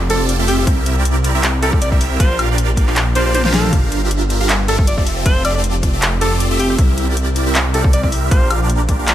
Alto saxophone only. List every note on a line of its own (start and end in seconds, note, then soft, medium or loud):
0.10 0.23 A4 loud
0.48 0.55 G4 medium
0.58 0.64 G4 medium
1.63 1.69 A4 medium
1.73 1.79 A4 medium
1.82 1.88 D5 medium
1.92 1.98 D5 medium
2.20 2.37 C5 medium
3.16 3.22 C5 medium
3.26 3.31 C5 medium
3.35 3.41 C5 medium
3.45 3.51 C5 medium
3.54 3.77 A4 medium
4.68 4.75 A4 medium
4.79 4.84 A4 medium
4.87 4.94 D5 medium
4.98 5.03 D5 medium
5.26 5.43 C5 loud
5.45 5.51 D5 medium
5.55 5.61 D5 medium
6.21 6.35 A4 medium
6.59 6.66 G4 medium
6.70 6.75 G4 medium
7.74 7.81 A4 medium
7.85 7.90 A4 medium
7.93 8.00 D5 medium
8.03 8.09 D5 medium
8.31 8.49 C5 medium